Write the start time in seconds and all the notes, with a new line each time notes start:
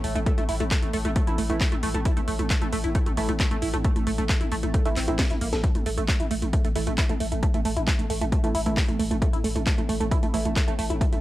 Already playing: A2 A3
0.04 A1 A3, open hi-hat
0.15 A1 A3, closed hi-hat, mid tom
0.26 A3, kick, closed hi-hat
0.38 A1 A3, closed hi-hat, mid tom
0.49 A1 E4, open hi-hat
0.60 A1 A3, closed hi-hat, mid tom
0.71 A3, kick, clap, closed hi-hat
0.82 A1 A3, closed hi-hat, mid tom
0.93 A1 A3, open hi-hat
1.05 A1 A3, closed hi-hat, mid tom
1.16 A3, kick, closed hi-hat
1.27 A1 E3 A3 E4, closed hi-hat, mid tom
1.38 A1 A3, open hi-hat
1.50 A1 E3 A3 E4, closed hi-hat, mid tom
1.61 A3, kick, clap, open hi-hat
1.72 A1 A3, closed hi-hat, mid tom
1.83 A1 A3, open hi-hat
1.94 A1 A3, closed hi-hat, mid tom
2.05 E4, kick, closed hi-hat
2.17 A1 A3, closed hi-hat, mid tom
2.28 A1 A3, open hi-hat
2.39 A1 A3, closed hi-hat, mid tom
2.50 A3, kick, clap, closed hi-hat
2.62 A1 A3, closed hi-hat, mid tom
2.73 A1 A3, open hi-hat
2.84 A1 E4, closed hi-hat, mid tom
2.95 A3, kick, closed hi-hat
3.06 A1 A3, closed hi-hat, mid tom
3.17 A1 E3 A3 E4, open hi-hat
3.29 A1 A3, closed hi-hat, mid tom
3.40 A3, kick, clap, closed hi-hat
3.51 A1 A3, closed hi-hat, mid tom
3.62 A1 E4, open hi-hat
3.74 A1 A3, closed hi-hat, mid tom
3.84 A3, kick, closed hi-hat
3.96 A1 A3, closed hi-hat, mid tom
4.07 A1 A3, open hi-hat
4.18 A1 A3, closed hi-hat, mid tom
4.29 A3, kick, clap, closed hi-hat
4.41 A1 E4, closed hi-hat, mid tom
4.52 A1 A3, open hi-hat
4.63 A1 A3, closed hi-hat, mid tom
4.74 A3, kick, closed hi-hat
4.85 A1 E3 A3 E4, closed hi-hat, mid tom
4.96 A1 C4, clap, open hi-hat
5.08 A1 E3 A3 C4 E4, closed hi-hat, mid tom
5.19 A#3, kick, snare, clap, open hi-hat
5.30 A1 E4, closed hi-hat, mid tom
5.41 A1 A#3, open hi-hat
5.53 A1 A4, snare, closed hi-hat, mid tom
5.64 A2 A3, kick, closed hi-hat
5.75 A1 A3, closed hi-hat, mid tom
5.86 A1 A3, open hi-hat
5.98 A1 A3, closed hi-hat, mid tom
6.08 A3, kick, clap, closed hi-hat
6.20 A1 E4, closed hi-hat, mid tom
6.31 A1 A3, open hi-hat
6.42 A1 A3, closed hi-hat, mid tom
6.53 A3, kick, closed hi-hat
6.65 A1 A3, closed hi-hat, mid tom
6.76 A1 E3 A3 E4, open hi-hat
6.87 A1 A3, closed hi-hat, mid tom
6.98 E4, kick, clap, closed hi-hat
7.09 A1 A3, closed hi-hat, mid tom
7.20 A1 A3, open hi-hat
7.32 A1 A3, closed hi-hat, mid tom
7.43 A3, kick, closed hi-hat
7.54 A1 A3, closed hi-hat, mid tom
7.65 A1 A3, open hi-hat
7.77 A1 E4, closed hi-hat, mid tom
7.87 A3, kick, clap, closed hi-hat
7.99 A1 A3, closed hi-hat, mid tom
8.10 A1 A3, open hi-hat
8.21 A1 A3, closed hi-hat, mid tom
8.32 A3, kick, closed hi-hat
8.44 A1 E3 A3 E4, closed hi-hat, mid tom
8.55 A1 E4, open hi-hat
8.66 A1 E3 A3 E4, closed hi-hat, mid tom
8.77 A3, kick, clap, open hi-hat
8.88 A1 A3, closed hi-hat, mid tom
8.99 A1 A3, open hi-hat
9.11 A1 A3, closed hi-hat, mid tom
9.22 A3, kick, closed hi-hat
9.33 A1 E4, closed hi-hat, mid tom
9.44 A1 A3, open hi-hat
9.56 A1 A3, closed hi-hat, mid tom
9.67 A3, kick, clap, closed hi-hat
9.78 A1 A3, closed hi-hat, mid tom
9.89 A1 A3, open hi-hat
10.00 A1 A3, closed hi-hat, mid tom
10.11 E4, kick, closed hi-hat
10.23 A1 A3, closed hi-hat, mid tom
10.34 A1 E3 A3 E4, open hi-hat
10.45 A1 A3, closed hi-hat, mid tom
10.56 A3, kick, clap, closed hi-hat
10.68 A1 A3, closed hi-hat, mid tom
10.79 A1 A3, open hi-hat
10.90 A1 E4, closed hi-hat, mid tom
11.01 A3, kick, closed hi-hat
11.12 A1 A3, closed hi-hat, mid tom